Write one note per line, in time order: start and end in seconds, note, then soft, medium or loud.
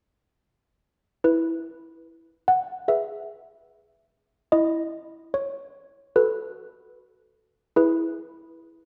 1.24 4.49 E4 medium
1.24 2.44 B4 medium
2.48 2.87 F#5 medium
2.88 4.49 G#4 soft
2.88 4.49 B4 soft
2.88 4.49 E5 medium
4.52 7.73 E4 medium
4.52 5.31 D#5 medium
5.34 6.12 C#5 medium
6.16 7.73 F#4 soft
6.16 7.73 A4 soft
6.16 7.73 B4 medium
7.76 8.85 E4 medium
7.76 8.85 G#4 soft
7.76 8.85 B4 medium